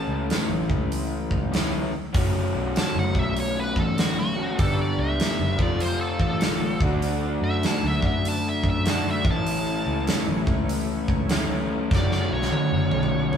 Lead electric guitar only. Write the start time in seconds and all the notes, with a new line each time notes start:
Already playing: A5
2.78 A5
2.99 F#5
3.19 E5
3.40 C#5
3.60 B4
3.80 A4
3.99 F#4
4.19 F#4
4.59 A4
4.81 D5
5.00 E5
5.62 D5
5.81 C5
6.01 A4
6.22 A4
7.44 E5
7.66 A5
7.87 E5
8.06 E5
8.28 A5
8.49 E5
8.70 E5
8.90 A5
9.11 E5
9.31 A5
11.95 D5
12.13 D5
12.34 C#5